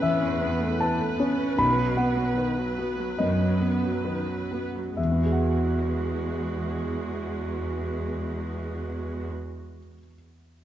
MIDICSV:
0, 0, Header, 1, 4, 480
1, 0, Start_track
1, 0, Key_signature, 4, "major"
1, 0, Tempo, 792602
1, 956, Time_signature, 4, 2, 24, 8
1, 1928, Tempo, 860832
1, 2408, Tempo, 909091
1, 3848, Tempo, 884956
1, 5947, End_track
2, 0, Start_track
2, 0, Title_t, "Grand piano"
2, 0, Program_c, 0, 0
2, 0, Control_c, 0, 64, 127
2, 0, Note_on_c, 0, 45, 43
2, 0, Note_on_c, 0, 59, 36
2, 0, Note_on_c, 0, 61, 36
2, 0, Note_on_c, 0, 71, 34
2, 0, Note_on_c, 0, 76, 52
2, 0, Note_on_c, 0, 78, 56
2, 13, Note_off_c, 0, 76, 0
2, 13, Note_on_c, 0, 76, 57
2, 15, Note_on_c, 0, 52, 39
2, 149, Note_off_c, 0, 61, 0
2, 253, Note_off_c, 0, 59, 0
2, 253, Note_on_c, 0, 59, 36
2, 390, Note_off_c, 0, 52, 0
2, 461, Note_off_c, 0, 76, 0
2, 487, Note_on_c, 0, 81, 59
2, 497, Note_off_c, 0, 71, 0
2, 497, Note_on_c, 0, 71, 36
2, 631, Note_off_c, 0, 59, 0
2, 725, Note_on_c, 0, 61, 39
2, 868, Note_off_c, 0, 71, 0
2, 934, Note_off_c, 0, 81, 0
2, 958, Note_off_c, 0, 61, 0
2, 958, Note_on_c, 0, 35, 44
2, 960, Note_on_c, 0, 83, 63
2, 968, Control_c, 0, 64, 0
2, 971, Note_off_c, 0, 78, 0
2, 974, Note_off_c, 0, 45, 0
2, 1090, Control_c, 0, 64, 127
2, 1180, Note_off_c, 0, 83, 0
2, 1194, Note_on_c, 0, 78, 54
2, 1197, Note_on_c, 0, 59, 35
2, 1440, Note_on_c, 0, 71, 37
2, 1584, Note_off_c, 0, 59, 0
2, 1685, Note_on_c, 0, 66, 36
2, 1830, Note_off_c, 0, 71, 0
2, 1903, Note_off_c, 0, 78, 0
2, 1904, Note_off_c, 0, 35, 0
2, 1929, Note_on_c, 0, 75, 51
2, 1937, Note_on_c, 0, 42, 35
2, 2069, Note_off_c, 0, 66, 0
2, 2170, Note_on_c, 0, 59, 28
2, 2313, Note_off_c, 0, 42, 0
2, 2411, Note_on_c, 0, 71, 31
2, 2557, Note_off_c, 0, 59, 0
2, 2656, Note_on_c, 0, 66, 27
2, 2804, Note_off_c, 0, 71, 0
2, 2878, Note_off_c, 0, 75, 0
2, 2895, Note_on_c, 0, 76, 35
2, 2899, Note_on_c, 0, 40, 27
2, 2900, Note_off_c, 0, 66, 0
2, 2911, Control_c, 0, 64, 0
2, 2937, Note_on_c, 0, 52, 29
2, 2974, Note_on_c, 0, 59, 29
2, 3011, Note_on_c, 0, 66, 28
2, 3024, Control_c, 0, 64, 127
2, 3047, Note_on_c, 0, 68, 28
2, 3084, Note_on_c, 0, 78, 29
2, 5479, Note_off_c, 0, 76, 0
2, 5483, Note_off_c, 0, 40, 0
2, 5521, Note_off_c, 0, 52, 0
2, 5560, Note_off_c, 0, 59, 0
2, 5597, Note_off_c, 0, 66, 0
2, 5635, Note_off_c, 0, 68, 0
2, 5673, Note_off_c, 0, 78, 0
2, 5947, End_track
3, 0, Start_track
3, 0, Title_t, "Viola section"
3, 0, Program_c, 1, 48
3, 0, Note_on_c, 1, 71, 43
3, 23, Note_on_c, 1, 59, 45
3, 122, Note_off_c, 1, 59, 0
3, 126, Note_on_c, 1, 61, 38
3, 243, Note_off_c, 1, 61, 0
3, 247, Note_on_c, 1, 59, 40
3, 365, Note_off_c, 1, 59, 0
3, 367, Note_on_c, 1, 57, 39
3, 483, Note_on_c, 1, 52, 43
3, 485, Note_off_c, 1, 57, 0
3, 602, Note_off_c, 1, 52, 0
3, 605, Note_on_c, 1, 57, 42
3, 720, Note_on_c, 1, 59, 41
3, 721, Note_off_c, 1, 57, 0
3, 837, Note_off_c, 1, 59, 0
3, 838, Note_on_c, 1, 61, 38
3, 955, Note_on_c, 1, 51, 44
3, 956, Note_off_c, 1, 61, 0
3, 1066, Note_off_c, 1, 51, 0
3, 1072, Note_on_c, 1, 54, 38
3, 1193, Note_off_c, 1, 54, 0
3, 1200, Note_on_c, 1, 59, 41
3, 1315, Note_on_c, 1, 54, 37
3, 1318, Note_off_c, 1, 59, 0
3, 1437, Note_off_c, 1, 54, 0
3, 1438, Note_on_c, 1, 51, 40
3, 1559, Note_off_c, 1, 51, 0
3, 1566, Note_on_c, 1, 54, 38
3, 1684, Note_off_c, 1, 54, 0
3, 1691, Note_on_c, 1, 59, 40
3, 1809, Note_off_c, 1, 59, 0
3, 1812, Note_on_c, 1, 54, 36
3, 1931, Note_off_c, 1, 54, 0
3, 1936, Note_on_c, 1, 51, 41
3, 2040, Note_off_c, 1, 51, 0
3, 2060, Note_on_c, 1, 54, 37
3, 2170, Note_off_c, 1, 54, 0
3, 2175, Note_on_c, 1, 59, 38
3, 2290, Note_off_c, 1, 59, 0
3, 2294, Note_on_c, 1, 54, 33
3, 2413, Note_off_c, 1, 54, 0
3, 2415, Note_on_c, 1, 51, 37
3, 2532, Note_off_c, 1, 51, 0
3, 2536, Note_on_c, 1, 54, 32
3, 2658, Note_off_c, 1, 54, 0
3, 2664, Note_on_c, 1, 59, 30
3, 2742, Note_off_c, 1, 71, 0
3, 2784, Note_off_c, 1, 59, 0
3, 2785, Note_on_c, 1, 54, 29
3, 2900, Note_on_c, 1, 56, 32
3, 2902, Note_off_c, 1, 54, 0
3, 2905, Note_on_c, 1, 66, 31
3, 5215, Note_off_c, 1, 56, 0
3, 5217, Note_off_c, 1, 66, 0
3, 5947, End_track
4, 0, Start_track
4, 0, Title_t, "Cello section"
4, 0, Program_c, 2, 48
4, 13, Note_on_c, 2, 40, 47
4, 405, Note_off_c, 2, 40, 0
4, 959, Note_on_c, 2, 47, 47
4, 1357, Note_off_c, 2, 47, 0
4, 1930, Note_on_c, 2, 42, 47
4, 2327, Note_off_c, 2, 42, 0
4, 2899, Note_on_c, 2, 40, 33
4, 5215, Note_off_c, 2, 40, 0
4, 5947, End_track
0, 0, End_of_file